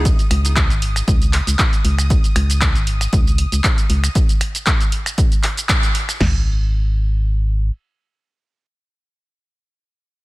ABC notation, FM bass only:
X:1
M:4/4
L:1/16
Q:"Swing 16ths" 1/4=117
K:C#dor
V:1 name="FM bass" clef=bass
C,, z C,,3 G,,,3 C,,3 C,, z2 C,,2- | C,, z C,,3 G,,,3 C,,3 C,, z2 C,, z | z16 | G,,,12 z4 |
z16 |]